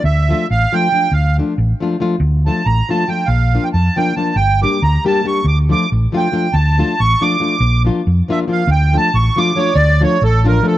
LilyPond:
<<
  \new Staff \with { instrumentName = "Accordion" } { \time 5/8 \key d \minor \tempo 4 = 139 << { e''4 f''8 g''4 | f''8 r2 | r8 a''8 bes''8 a''8 g''8 | f''8. g''16 a''8 g''8 a''8 |
g''8 d'''8 bes''8 a''8 cis'''8 | d'''8 d'''8 r8 g''4 | a''4 cis'''8 d'''4~ | d'''8 r4 e''8 f''8 |
g''8 a''8 cis'''8 d'''4 | r2 r8 | } \\ { r2 r8 | r2 r8 | r2 r8 | r2 r8 |
r2 r8 | r2 r8 | r2 r8 | r2 r8 |
r2 cis''8 | d''8 cis''8 a'8 bes'8 a'8 | } >> }
  \new Staff \with { instrumentName = "Nylon-string guitar" } { \time 5/8 \key d \minor r8 <f a d' f'>8 r8 <f a d' f'>8 <f a d' f'>8 | r8 <f a d' f'>8 r8 <f a d' f'>8 <f a d' f'>8 | r8 <f a d' f'>8 r8 <f a d' f'>8 <f a d' f'>8 | r8 <f bes d' f'>8 r8 <f bes d' f'>8 <f bes d' f'>8 |
r8 <g bes d' g'>8 r8 <g bes d' g'>8 <g bes d' g'>8 | r8 <f a d' f'>8 r8 <f a d' f'>8 <f a d' f'>8 | r8 <f a d' f'>8 r8 <f a d' f'>8 <f a d' f'>8 | r8 <f bes d' f'>8 r8 <f bes d' f'>8 <f bes d' f'>8 |
r8 <f a d' f'>8 r8 <f a d' f'>8 <f a d' f'>8 | r8 <f a d' f'>8 r8 <f a d' f'>8 <f a d' f'>8 | }
  \new Staff \with { instrumentName = "Fingered electric bass" } { \clef bass \time 5/8 \key d \minor d,4 a,,8 r4 | d,4 a,,8 r4 | d,4 a,,8 r4 | bes,,4 f,8 r4 |
g,,4 d,8 r4 | d,4 a,,8 r4 | d,4 a,,8 r4 | bes,,4 f,8 r4 |
d,4 a,,8 r4 | d,4 a,,4. | }
>>